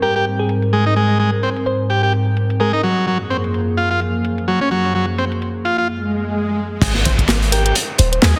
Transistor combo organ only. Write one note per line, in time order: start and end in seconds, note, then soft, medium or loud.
0.02 0.14 G4 medium
0.16 0.25 G4 loud
0.73 0.85 G#3 medium
0.86 0.94 D#4 loud
0.96 1.18 G#3 loud
1.19 1.30 G#3 medium
1.43 1.50 C4 medium
1.90 2.02 G4 medium
2.03 2.13 G4 medium
2.60 2.72 G#3 medium
2.73 2.82 D#4 loud
2.83 3.06 F#3 loud
3.07 3.18 F#3 medium
3.30 3.37 C4 medium
3.77 3.89 F4 medium
3.91 4.00 F4 loud
4.48 4.60 F#3 medium
4.61 4.69 C#4 loud
4.71 4.94 F#3 loud
4.95 5.06 F#3 medium
5.18 5.25 C4 medium
5.65 5.77 F4 medium
5.78 5.88 F4 loud
6.82 6.93 G#3 medium
7.05 7.12 C4 medium
7.52 7.64 G4 medium
7.65 7.75 G4 loud
8.22 8.35 G#3 medium
8.36 8.39 D#4 loud